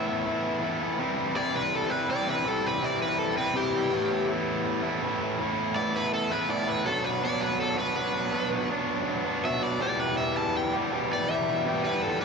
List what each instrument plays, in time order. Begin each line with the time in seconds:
Already playing: distorted electric guitar A2 E3, overdriven electric guitar E5
0.07 distorted electric guitar A3 B3 E4
0.25 distorted electric guitar E3 A3 B3 E4
0.62 distorted electric guitar E3 A3 B3 E4
0.80 distorted electric guitar A3 B3 E4
0.98 distorted electric guitar C3 E3 G3 C4 E4
1.34 distorted electric guitar E3 G3 C4 E4, overdriven electric guitar D5
1.55 overdriven electric guitar B4
1.75 overdriven electric guitar A4
1.90 distorted electric guitar G3 C4 E4, overdriven electric guitar B4
2.09 distorted electric guitar C3 E3 G3 C4 E4, overdriven electric guitar D5
2.26 distorted electric guitar G3 C4 E4, overdriven electric guitar B4
2.45 distorted electric guitar C3 E3 G3 C4 E4, overdriven electric guitar A4
2.66 overdriven electric guitar B4
2.81 distorted electric guitar E3 G3 C4 E4, overdriven electric guitar D5
3.02 overdriven electric guitar B4
3.19 overdriven electric guitar A4
3.37 distorted electric guitar G3 C4 E4, overdriven electric guitar B4
3.54 distorted electric guitar C3 E3 G3 C4 E4, overdriven electric guitar G4
3.73 distorted electric guitar G3 C4 E4
3.91 distorted electric guitar A2 E3 A3 B3 E4
4.27 distorted electric guitar E3 A3 B3 E4
4.83 distorted electric guitar A3 B3 E4
5.02 distorted electric guitar A2 E3 A3 B3 E4
5.21 distorted electric guitar A3 B3 E4
5.40 distorted electric guitar A2 E3 A3 B3 E4
5.76 distorted electric guitar E3 A3 B3 E4, overdriven electric guitar D5
5.96 overdriven electric guitar B4
6.14 overdriven electric guitar A4
6.30 distorted electric guitar A3 B3 E4, overdriven electric guitar B4
6.49 distorted electric guitar A2 E3 A3 B3 E4, overdriven electric guitar D5
6.68 distorted electric guitar A3 B3 E4, overdriven electric guitar B4
6.85 distorted electric guitar B2 F#3 B3 D4 F#4, overdriven electric guitar A4
7.04 overdriven electric guitar B4
7.23 distorted electric guitar F#3 B3 D4 F#4, overdriven electric guitar D5
7.41 overdriven electric guitar B4
7.60 overdriven electric guitar A4
7.77 distorted electric guitar B3 D4 F#4, overdriven electric guitar B4
7.95 distorted electric guitar B2 F#3 B3 D4 F#4, overdriven electric guitar B4
8.14 distorted electric guitar B3 D4 F#4
8.32 distorted electric guitar B2 F#3 B3 D4 F#4
8.70 distorted electric guitar F#3 B3 D4 F#4
9.25 distorted electric guitar B3 D4 F#4
9.43 distorted electric guitar B2 F#3 B3 D4 F#4, overdriven electric guitar E5
9.62 distorted electric guitar B3 D4 F#4, overdriven electric guitar D5
9.80 distorted electric guitar E2 B2 E3 G3 B3 G4, overdriven electric guitar D5
10.00 overdriven electric guitar B4
10.18 distorted electric guitar E3 G3 B3 G4, overdriven electric guitar E5
10.37 overdriven electric guitar A5
10.57 overdriven electric guitar G5
10.73 distorted electric guitar E3 G3 B3 G4
10.91 distorted electric guitar E2 B2 E3 G3 B3 G4
11.11 distorted electric guitar E3 G3 B3 G4, overdriven electric guitar D5
11.28 distorted electric guitar E2 B2 E3 G3 B3 G4, overdriven electric guitar E5
11.66 distorted electric guitar E3 G3 B3 G4
11.84 overdriven electric guitar B4
12.02 overdriven electric guitar A4
12.21 overdriven electric guitar B4